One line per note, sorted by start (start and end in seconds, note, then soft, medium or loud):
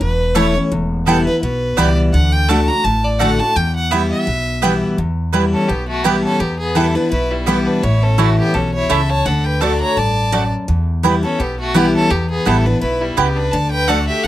0.00 0.55 E1 medium
0.00 0.68 E2 medium
0.00 0.37 B4 loud
0.35 0.54 E3 loud
0.35 0.45 A3 medium
0.35 0.54 A3 loud
0.35 0.55 C#4 loud
0.35 0.45 E4 loud
0.35 0.54 E4 loud
0.35 0.46 C#5 medium
0.35 0.55 C#5 loud
0.35 0.46 A5 loud
0.55 0.72 C#4 soft
0.55 0.71 E4 medium
0.72 1.26 E1 medium
0.72 1.40 E2 medium
1.06 1.26 E3 medium
1.06 1.26 G3 medium
1.06 1.17 B3 medium
1.06 1.26 B3 medium
1.06 1.17 E4 loud
1.06 1.26 E4 loud
1.06 1.25 A4 medium
1.06 1.17 B4 medium
1.06 1.17 G5 loud
1.26 1.43 B3 medium
1.26 1.42 E4 medium
1.26 1.41 B4 medium
1.42 1.73 B1 medium
1.42 2.11 B2 medium
1.42 1.79 B4 medium
1.77 2.08 C#2 medium
1.77 2.12 E3 loud
1.77 2.12 G3 loud
1.77 1.87 B3 loud
1.77 2.12 B3 loud
1.77 1.88 E4 loud
1.77 2.13 E4 loud
1.77 1.88 B4 loud
1.77 1.97 D5 loud
1.77 1.88 G5 loud
2.13 2.68 D2 medium
2.13 2.48 D3 medium
2.13 2.34 F#5 loud
2.33 2.50 G5 loud
2.49 2.68 D3 medium
2.49 2.59 A3 loud
2.49 2.68 A3 medium
2.49 2.69 D4 loud
2.49 2.59 F#4 loud
2.49 2.67 F#4 loud
2.49 2.59 D5 loud
2.49 2.69 A5 loud
2.49 2.59 A5 medium
2.68 2.85 D4 medium
2.68 2.84 F#4 medium
2.68 2.85 A#5 loud
2.84 3.39 A1 medium
2.84 3.53 A2 medium
2.84 3.06 A5 loud
3.05 3.21 D5 medium
3.19 3.39 D3 loud
3.19 3.30 A3 medium
3.19 3.40 A3 loud
3.19 3.40 D4 loud
3.19 3.30 F#4 loud
3.19 3.39 F#4 loud
3.19 3.30 D5 medium
3.19 3.41 F#5 loud
3.19 3.30 A5 loud
3.40 3.56 D4 medium
3.40 3.55 F#4 medium
3.40 3.58 A5 loud
3.56 4.11 E2 medium
3.56 4.24 E2 loud
3.56 3.75 G5 loud
3.76 3.93 F#5 medium
3.91 4.25 E3 medium
3.91 4.26 G3 medium
3.91 4.01 B3 medium
3.91 4.26 B3 loud
3.91 4.01 E4 medium
3.91 4.26 E4 loud
3.91 4.01 B4 loud
3.91 4.11 E5 medium
3.91 4.02 G5 medium
4.11 4.86 E5 loud
4.27 4.82 B1 medium
4.27 4.95 B2 medium
4.62 4.97 E3 loud
4.62 4.97 G3 loud
4.62 4.72 B3 loud
4.62 4.97 B3 loud
4.62 4.72 E4 medium
4.62 4.98 E4 loud
4.62 4.73 B4 loud
4.62 4.73 G5 loud
4.98 5.66 E2 medium
4.98 5.53 E2 medium
5.33 5.68 E3 medium
5.33 5.68 G3 medium
5.33 5.43 B3 medium
5.33 5.68 B3 medium
5.33 5.44 E4 medium
5.33 5.68 E4 medium
5.33 5.44 B4 medium
5.33 5.44 G5 medium
5.53 5.70 C#4 medium
5.53 5.70 A4 medium
5.69 6.24 B1 medium
5.69 6.38 B2 medium
5.69 5.87 B3 medium
5.69 5.88 G4 medium
5.88 6.05 A3 medium
5.88 6.06 F#4 medium
6.03 6.39 E3 loud
6.03 6.39 G3 loud
6.03 6.23 B3 medium
6.03 6.15 B3 medium
6.03 6.39 B3 loud
6.03 6.15 E4 medium
6.03 6.40 E4 loud
6.03 6.24 G4 medium
6.03 6.15 B4 medium
6.03 6.15 G5 loud
6.24 6.42 C#4 medium
6.24 6.41 A4 loud
6.40 6.95 E2 medium
6.40 7.09 E2 medium
6.40 6.60 B3 medium
6.40 6.59 G4 medium
6.59 6.77 B3 medium
6.59 6.78 G#4 medium
6.75 6.95 E3 medium
6.75 6.95 G3 medium
6.75 6.86 B3 medium
6.75 6.95 B3 medium
6.75 6.86 E4 medium
6.75 6.97 E4 medium
6.75 6.94 E4 loud
6.75 6.97 A4 medium
6.75 6.86 B4 medium
6.75 6.86 G5 loud
6.95 7.12 B3 medium
6.95 7.11 D4 medium
6.95 7.11 E4 medium
6.95 7.11 B4 medium
7.11 7.67 B1 medium
7.11 7.80 B2 medium
7.11 7.32 E4 medium
7.11 7.32 B4 medium
7.31 7.49 G3 medium
7.31 7.48 E4 medium
7.46 7.81 E3 loud
7.46 7.82 G3 medium
7.46 7.57 B3 medium
7.46 7.68 B3 medium
7.46 7.82 B3 loud
7.46 7.57 E4 loud
7.46 7.82 E4 loud
7.46 7.68 G4 medium
7.46 7.57 B4 medium
7.46 7.58 G5 medium
7.66 7.85 D4 medium
7.66 7.84 B4 medium
7.83 8.38 A1 loud
7.83 8.52 A2 medium
7.83 8.04 E4 medium
7.83 8.05 C#5 medium
8.03 8.21 C#4 medium
8.03 8.20 A4 medium
8.18 8.53 E3 medium
8.18 8.28 A3 medium
8.18 8.53 A3 medium
8.18 8.38 A3 medium
8.18 8.53 C#4 medium
8.18 8.29 E4 medium
8.18 8.53 E4 medium
8.18 8.38 F#4 medium
8.18 8.29 C#5 medium
8.18 8.29 A5 medium
8.39 8.57 B3 medium
8.39 8.56 G4 medium
8.54 8.85 B1 medium
8.54 8.88 B2 medium
8.54 8.75 C#4 medium
8.54 8.74 A4 medium
8.74 8.91 E4 medium
8.74 8.91 C#5 loud
8.89 9.21 C#2 medium
8.89 9.24 C#3 loud
8.89 9.00 A3 loud
8.89 9.00 E4 loud
8.89 9.11 A4 medium
8.89 9.00 C#5 medium
8.89 9.11 E5 medium
8.89 9.00 A5 loud
9.10 9.29 C#5 medium
9.10 9.27 A5 loud
9.26 9.81 D2 medium
9.26 9.60 D3 medium
9.26 9.47 A4 medium
9.26 9.46 F#5 medium
9.45 9.65 B4 medium
9.45 9.63 G5 medium
9.61 9.96 D3 medium
9.61 9.71 A3 medium
9.61 9.96 A3 medium
9.61 9.96 D4 medium
9.61 9.71 F#4 medium
9.61 9.96 F#4 loud
9.61 9.71 D5 medium
9.61 9.82 D5 medium
9.61 9.80 A5 medium
9.61 9.72 A5 medium
9.81 10.00 C#5 loud
9.81 9.99 A#5 loud
9.97 10.52 A1 medium
9.97 10.31 G2 medium
9.97 10.53 D5 medium
9.97 10.52 A5 loud
10.32 10.67 F#2 loud
10.32 10.43 A3 medium
10.32 10.43 F#4 medium
10.32 10.43 D5 medium
10.32 10.43 A5 loud
10.68 11.36 E2 medium
10.68 11.23 E2 medium
11.03 11.22 E3 medium
11.03 11.23 G3 medium
11.03 11.14 B3 medium
11.03 11.23 B3 medium
11.03 11.14 E4 medium
11.03 11.22 E4 loud
11.03 11.14 B4 medium
11.03 11.14 G5 loud
11.23 11.40 B3 medium
11.23 11.42 C#4 medium
11.23 11.39 E4 medium
11.23 11.41 A4 medium
11.40 11.94 B1 medium
11.40 12.08 B2 medium
11.40 11.59 B3 medium
11.40 11.59 G4 medium
11.60 11.77 A3 medium
11.60 11.78 F#4 loud
11.74 12.09 E3 loud
11.74 12.09 G3 loud
11.74 11.85 B3 medium
11.74 11.94 B3 medium
11.74 12.09 B3 loud
11.74 11.85 E4 medium
11.74 12.10 E4 loud
11.74 11.95 G4 medium
11.74 11.85 B4 medium
11.74 11.85 G5 medium
11.95 12.11 C#4 medium
11.95 12.12 A4 loud
12.10 12.79 E2 medium
12.10 12.38 E2 medium
12.10 12.30 B3 medium
12.10 12.30 G4 medium
12.30 12.48 B3 medium
12.30 12.49 G#4 loud
12.45 12.77 A1 medium
12.45 12.65 E3 medium
12.45 12.65 G3 medium
12.45 12.56 B3 medium
12.45 12.65 B3 medium
12.45 12.56 E4 medium
12.45 12.68 E4 medium
12.45 12.65 E4 medium
12.45 12.67 A4 medium
12.45 12.56 B4 medium
12.45 12.56 G5 medium
12.66 12.82 B3 medium
12.66 12.82 D4 medium
12.66 12.81 E4 medium
12.66 12.81 B4 medium
12.81 13.12 B1 medium
12.81 13.16 B2 medium
12.81 13.03 E4 medium
12.81 13.02 B4 medium
13.01 13.19 G3 medium
13.01 13.19 E4 medium
13.17 13.48 C#2 medium
13.17 13.51 C#3 loud
13.17 13.27 B3 medium
13.17 13.38 B3 medium
13.17 13.27 E4 loud
13.17 13.38 G4 medium
13.17 13.27 B4 loud
13.17 13.28 G5 loud
13.36 13.55 D4 medium
13.36 13.53 B4 medium
13.51 14.08 D2 medium
13.51 13.87 D3 medium
13.51 13.72 D5 medium
13.51 13.70 A5 medium
13.71 13.91 B4 medium
13.71 13.89 G5 loud
13.88 14.22 D3 medium
13.88 13.98 A3 loud
13.88 14.23 A3 medium
13.88 14.23 D4 medium
13.88 13.98 F#4 loud
13.88 14.23 F#4 medium
13.88 14.08 A4 medium
13.88 13.98 D5 loud
13.88 14.07 F#5 loud
13.88 13.98 A5 medium
14.08 14.27 G4 medium
14.08 14.25 E5 medium
14.24 14.27 F#5 loud